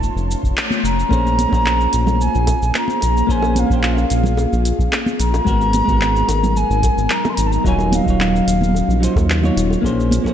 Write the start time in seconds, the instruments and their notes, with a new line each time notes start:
Already playing: analog synth bass F1, clean electric guitar A3 D#4 F4 C#5, ambient pad A3 C#4 F4 C#5 C6, flute A5
0.02 kick, cabasa
0.15 analog synth bass F1, cabasa
0.31 cabasa
0.43 analog synth bass F1, kick, cabasa
0.57 clap, cabasa
0.71 high conga, cabasa
0.84 analog synth bass F1, flute A#5, cabasa
1.00 cabasa
1.09 analog synth bass A#1, clean electric guitar A#3 C#4 G#4 C5, ambient pad A#3 C#4 F4 G#4 C5, kick, high bongo, cabasa
1.27 cabasa
1.39 closed hi-hat, high conga, cabasa
1.49 analog synth bass A#1, clean electric guitar A#3 C#4, kick
1.53 clean electric guitar G#4 C5, high bongo, cabasa
1.66 clap, cabasa
1.81 cabasa
1.93 analog synth bass A#1, closed hi-hat, cabasa
2.06 high bongo, high conga, low conga, cabasa
2.21 flute G#5, cabasa
2.35 analog synth bass A#1, cabasa
2.47 kick, closed hi-hat, high bongo, cabasa
2.62 analog synth bass A#1, cabasa
2.75 flute A#5, clap, cabasa
2.88 high conga, cabasa
3.01 analog synth bass A#1, closed hi-hat, high bongo, cabasa
3.17 cabasa
3.27 analog synth bass A#1, clean electric guitar A#3 C#4 G#4 C5, kick, cabasa
3.31 flute G#5
3.42 high bongo, cabasa
3.56 flute F5, closed hi-hat, high conga, cabasa
3.66 analog synth bass A#1, clean electric guitar A#3 C#4, kick
3.71 clean electric guitar G#4 C5, cabasa
3.75 flute G5
3.80 flute F5, clap
3.84 cabasa
3.92 flute E5
3.97 flute F5, high bongo, cabasa
4.10 analog synth bass A#1, closed hi-hat, cabasa
4.24 high conga, low conga, cabasa
4.37 high bongo, cabasa
4.53 analog synth bass A#1, cabasa
4.65 closed hi-hat, cabasa
4.79 analog synth bass A#1, kick, cabasa
4.92 clap, high bongo, cabasa
5.06 high conga, cabasa
5.19 analog synth bass A#1, flute A#5, closed hi-hat, cabasa
5.34 high bongo, cabasa
5.45 analog synth bass G#1, ambient pad F#3 G#3 B3 D#4 A#4, clean electric guitar G#3 B3 F#4 A#4, kick, cabasa
5.61 cabasa
5.73 closed hi-hat, high conga, cabasa
5.85 analog synth bass G#1, clean electric guitar G#3 B3, kick
5.89 clean electric guitar F#4 A#4, high bongo, cabasa
6.01 clap, cabasa
6.16 cabasa
6.29 analog synth bass G#1, closed hi-hat, high bongo, cabasa
6.43 high conga, low conga, cabasa
6.56 flute G#5, cabasa
6.70 analog synth bass G#1, cabasa
6.83 kick, closed hi-hat, high bongo, cabasa
6.98 analog synth bass G#1, cabasa
7.10 flute A#5, clap, cabasa
7.25 high bongo, high conga, cabasa
7.29 flute C6
7.34 analog synth bass G#1, flute A#5, closed hi-hat
7.38 cabasa
7.46 flute A5
7.51 flute A#5, cabasa
7.64 analog synth bass D#1, clean electric guitar F#3 D#4 F4 C#5, ambient pad A#3 C#4 F4, flute G#5, kick, cabasa
7.79 high bongo, cabasa
7.92 flute F5, closed hi-hat, high conga, cabasa
8.03 analog synth bass D#1, clean electric guitar F#3 D#4, kick
8.08 clean electric guitar F4 C#5, cabasa
8.20 clap, high bongo, cabasa
8.36 cabasa
8.47 analog synth bass D#1, closed hi-hat, cabasa
8.61 high conga, low conga, cabasa
8.75 high bongo, cabasa
8.88 analog synth bass A#1, cabasa
9.00 clean electric guitar F#3 D#4 F4 C5, closed hi-hat, cabasa
9.16 analog synth bass D#2, kick, high bongo, cabasa
9.30 clap, cabasa
9.42 clean electric guitar F#3 D#4 F4 C#5, high conga, cabasa
9.56 analog synth bass D#1, closed hi-hat, cabasa
9.70 high bongo, cabasa
9.82 analog synth bass A#1, clean electric guitar A#3 C#4 G#4, ambient pad C#4 G#4 C5, kick, high bongo
9.86 clean electric guitar C5, cabasa
10.00 cabasa
10.11 closed hi-hat, high conga, cabasa
10.22 analog synth bass A#1, clean electric guitar A#3 C#4, kick
10.26 clean electric guitar G#4 C5, high bongo, cabasa